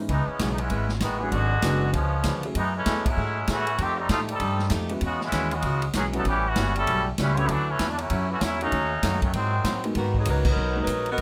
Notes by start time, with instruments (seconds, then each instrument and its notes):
0.08 upright bass C#2, steel-string acoustic guitar C#3 G#3 B3 E4, trombone section E3 G#3 B3 D#4, kick, ride
0.27 trombone section E3 G#3 B3 C#4, muted upright bass stroke
0.39 upright bass B1, steel-string acoustic guitar C#3 G#3 B3 E4, kick, snare, hi-hat pedal, ride
0.51 trombone section D#4
0.58 trombone section G#3 B3 C#4 E4, ride
0.69 upright bass G#1, steel-string acoustic guitar C#3 G#3 B3 E4, kick, ride
0.89 snare
1.00 upright bass A1, steel-string acoustic guitar C#3 G#3 B3 E4, trombone section D#3 G#3 B3 F#4, kick, snare, hi-hat pedal, ride
1.19 trombone section E3 B3 C#4 G#4, grand piano F#3 G#3 B3 D4 F#4
1.32 upright bass G#1, steel-string acoustic guitar G#2 F#3 B3 D4, trombone section D3 G#3 B3 F#4, kick, ride
1.62 upright bass F#1, steel-string acoustic guitar G#2 F#3 B3 D4, grand piano F#3 G#3 B3 D4 F#4, kick, snare, hi-hat pedal, ride
1.93 upright bass C#2, steel-string acoustic guitar C#3 F3 B3 D4, trombone section F3 G#3 B3 C#4, kick, ride
2.23 upright bass D2, steel-string acoustic guitar C#3 F3 B3 D4, kick, snare, hi-hat pedal, ride
2.43 grand piano F#3 A3 C#4 E4 G#4, ride
2.55 upright bass F#2, trombone section E3 G#3 B3 D#4, steel-string acoustic guitar F#3 A3 E4 G#4, kick, ride
2.77 trombone section E3 G#3 A3 C#4
2.86 upright bass E2, steel-string acoustic guitar F#3 A3 E4 G#4, kick, snare, hi-hat pedal, ride
3.06 trombone section F#3 G#3 C#4 E4, kick, ride
3.17 upright bass G#2, steel-string acoustic guitar F#3 A3 E4 G#4, kick
3.47 upright bass A2, trombone section E3 A3 C#4 F#4, steel-string acoustic guitar F#3 A3 E4 G#4, kick, snare, hi-hat pedal, ride
3.67 ride
3.78 upright bass F2, trombone section D#3 A3 C4 G4, steel-string acoustic guitar F3 A3 D#4 G4, kick, ride
3.97 trombone section G3 A3 C4 D#4
4.09 upright bass A2, steel-string acoustic guitar F3 A3 D#4 G4, trombone section A3 C4 D#4 F4, kick, snare, hi-hat pedal, ride
4.28 trombone section G3 C4 D#4 A4, ride
4.40 upright bass G2, steel-string acoustic guitar F3 A3 D#4 G4, kick, ride
4.59 snare
4.70 upright bass F2, steel-string acoustic guitar F3 A3 D#4 G4, kick, snare, hi-hat pedal, ride
4.89 grand piano E3 G#3 B3 C#4 F#4, ride
5.01 upright bass E2, steel-string acoustic guitar E3 G#3 C#4 F#4, trombone section G#3 B3, kick, ride
5.05 trombone section C#3 F#4
5.21 trombone section G#3 B3 C#4 E4, snare
5.32 upright bass D#2, steel-string acoustic guitar E3 G#3 C#4 F#4, kick, snare, hi-hat pedal, ride
5.51 trombone section C#3 G#3 B3 F#4, ride
5.62 upright bass C#2, steel-string acoustic guitar E3 G#3 C#4 F#4, kick, ride
5.82 ride
5.93 upright bass B1, steel-string acoustic guitar E3 G#3 C#4, trombone section F#3 B3 C#4 G#4, kick, snare, hi-hat pedal, ride
5.98 steel-string acoustic guitar F#4
6.13 grand piano E3 G3 B3 C#4 F#4, trombone section F#3 B3 D#4 A4, ride
6.25 upright bass A1, steel-string acoustic guitar A2 G3 C#4 F#4, trombone section E3 B3 C#4 G4, kick, ride
6.47 trombone section E3 B3 C#4 F#4
6.55 upright bass G1, steel-string acoustic guitar A2 G3 C#4 F#4, kick, snare, hi-hat pedal, ride
6.76 trombone section G3 C#4 E4 A4, ride
6.87 upright bass B1, steel-string acoustic guitar A2 G3 C#4 F#4, kick, ride
7.18 upright bass C#2, steel-string acoustic guitar A2 G3 C#4 F#4, trombone section G3 C#4 E4 B4, kick, snare, hi-hat pedal, ride
7.37 grand piano D3 F#3 A3 C#4 E4, trombone section B3 E4 G4 C#5, ride
7.48 upright bass D2, steel-string acoustic guitar D3 F#3 C#4 E4, trombone section E3 F#3 A3 D4, kick, ride
7.68 trombone section E3 F#3 A3 C#4
7.79 upright bass E2, steel-string acoustic guitar D3 F#3 C#4 E4, kick, snare, hi-hat pedal, ride
7.90 trombone section D4
7.98 trombone section F#3 A3 C#4 E4, ride
8.10 upright bass F#2, steel-string acoustic guitar D3 F#3 C#4 E4, kick, ride
8.30 trombone section E3 A3 C#4 F#4
8.41 upright bass E2, steel-string acoustic guitar D3 F#3 C#4 E4, trombone section F#3 A3 C#4 E4, kick, snare, hi-hat pedal, ride
8.61 grand piano D#3 F#3 A3 C#4 D#4, trombone section F#3 A3 C#4 D#4, ride
8.72 upright bass D#2, steel-string acoustic guitar D#3 A3 C#4 F#4, kick, ride
9.03 upright bass F#2, steel-string acoustic guitar D#3 A3 C#4 F#4, kick, snare, hi-hat pedal, ride
9.22 trombone section D#3 F#3 A3 C#4, kick, ride
9.33 upright bass G#2, steel-string acoustic guitar G#2 F#3 C4 E4, trombone section D#3 F#3 G#3 C4, kick, ride
9.64 steel-string acoustic guitar G#2 F#3 C4 E4, upright bass A2, kick, snare, hi-hat pedal, ride
9.84 grand piano F#3 G#3 A#3 B3 D#4, ride
9.95 upright bass G#2, saxophone section D#3 B3 F#4, steel-string acoustic guitar G#3 B3 F#4 A#4, kick, ride
9.99 saxophone section A#3
10.14 saxophone section D#4, kick
10.18 saxophone section F#3 B3 G#4
10.25 upright bass C#2, saxophone section F#3 A#3 B4, steel-string acoustic guitar G#3 B3 F#4 A#4, kick, hi-hat pedal, ride
10.29 saxophone section D#4
10.45 saxophone section D#4, kick, crash
10.49 saxophone section F#3 B3 A#4
10.56 upright bass B1, steel-string acoustic guitar G#3 B3 F#4 A#4
10.76 grand piano F#3 G#3 A#3 B3 D#4
10.81 saxophone section F#3 D#4 A#4 B4
10.87 upright bass A#1, steel-string acoustic guitar G#3 B3 F#4 A#4, kick, hi-hat pedal, ride
11.06 ride
11.11 saxophone section B3 F#4 A#4 D#5
11.18 upright bass F#1, kick, ride